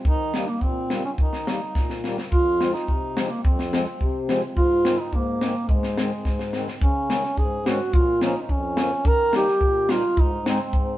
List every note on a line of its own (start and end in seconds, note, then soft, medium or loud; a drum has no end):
0.05 0.33 D#3 medium
0.05 0.50 D#4 loud
0.05 kick medium
0.34 0.46 D#3 medium
0.34 0.46 G3 medium
0.34 0.47 A#3 medium
0.34 snare medium
0.48 0.64 A#3 medium
0.61 1.04 A#2 medium
0.61 1.04 C4 medium
0.61 kick medium
0.90 1.03 D#3 medium
0.90 1.03 G3 medium
0.90 1.03 A#3 medium
0.90 snare medium
1.05 1.11 C#4 medium
1.18 1.46 D#3 medium
1.18 2.00 D#4 medium
1.18 kick medium
1.33 snare soft
1.47 1.60 D#3 medium
1.47 1.60 G3 medium
1.47 1.60 A#3 medium
1.47 snare medium
1.75 2.17 A#2 medium
1.75 kick medium
1.75 snare soft
1.90 snare soft
2.04 2.17 D#3 medium
2.04 2.17 G3 medium
2.04 2.17 A#3 medium
2.04 snare medium
2.18 snare medium
2.31 2.74 F2 medium
2.31 2.71 F4 loud
2.31 kick medium
2.60 2.72 F3 medium
2.60 2.73 G#3 soft
2.60 2.73 C4 medium
2.60 snare medium
2.73 3.30 D#4 medium
2.73 snare soft
2.88 3.30 C3 medium
2.88 kick medium
3.16 3.28 F3 medium
3.16 3.29 G#3 soft
3.16 3.29 C4 medium
3.16 snare medium
3.29 3.42 A#3 medium
3.42 3.86 F2 medium
3.42 4.24 C4 medium
3.42 kick medium
3.59 snare soft
3.71 3.84 F3 medium
3.71 3.85 G#3 medium
3.71 3.85 C4 medium
3.71 snare medium
4.00 4.42 C3 medium
4.00 kick medium
4.28 4.41 F3 medium
4.28 4.41 G#3 medium
4.28 4.41 C4 medium
4.28 snare medium
4.56 4.98 G#2 medium
4.56 5.01 F4 loud
4.56 kick medium
4.84 4.97 D#3 medium
4.84 4.97 G#3 medium
4.84 4.97 C4 medium
4.84 snare medium
5.00 5.16 D#4 medium
5.12 5.55 G#2 medium
5.12 5.71 A#3 medium
5.12 kick soft
5.40 5.53 D#3 soft
5.40 5.53 G#3 medium
5.40 5.54 C4 medium
5.40 snare medium
5.69 6.11 G#2 medium
5.69 6.54 G#3 medium
5.69 kick medium
5.83 snare soft
5.97 6.10 D#3 medium
5.97 6.11 G#3 medium
5.97 6.11 C4 medium
5.97 snare medium
6.25 6.67 G#2 medium
6.25 kick soft
6.25 snare soft
6.39 snare soft
6.53 6.67 D#3 medium
6.53 6.67 G#3 medium
6.53 6.67 C4 medium
6.53 snare medium
6.68 snare soft
6.81 7.24 C#3 soft
6.81 7.40 C#4 medium
6.81 kick medium
7.10 7.23 D#3 medium
7.10 7.23 G#3 medium
7.10 7.23 C#4 medium
7.10 snare medium
7.24 snare soft
7.37 7.80 G#2 medium
7.37 7.70 G#4 medium
7.37 kick medium
7.66 7.79 D#3 medium
7.66 7.79 G#3 medium
7.66 7.79 C#4 medium
7.66 7.96 F#4 medium
7.66 snare medium
7.93 8.35 A#2 medium
7.93 8.22 F4 medium
7.93 kick medium
8.21 8.34 F3 medium
8.21 8.34 A#3 medium
8.21 8.35 C#4 medium
8.21 8.41 D#4 medium
8.21 snare medium
8.41 8.52 D#4 soft
8.49 8.92 F2 medium
8.49 9.08 C#4 medium
8.49 kick soft
8.77 8.90 F3 medium
8.77 8.91 A#3 medium
8.77 8.91 C#4 medium
8.77 snare medium
9.05 9.48 D#3 medium
9.05 9.35 A#4 loud
9.05 kick medium
9.33 9.47 G3 medium
9.33 9.47 A#3 medium
9.33 9.47 D#4 medium
9.33 9.93 G4 medium
9.33 snare medium
9.47 snare soft
9.61 10.04 A#2 medium
9.61 kick medium
9.89 10.03 G3 medium
9.89 10.03 A#3 medium
9.89 10.03 D#4 medium
9.89 10.21 F4 medium
9.89 snare medium
10.17 10.60 G#2 medium
10.17 10.47 D#4 loud
10.17 kick medium
10.46 10.58 G#3 medium
10.46 10.59 C4 medium
10.46 10.98 C4 medium
10.46 10.59 D#4 medium
10.46 snare medium
10.73 10.98 G#2 medium
10.73 kick medium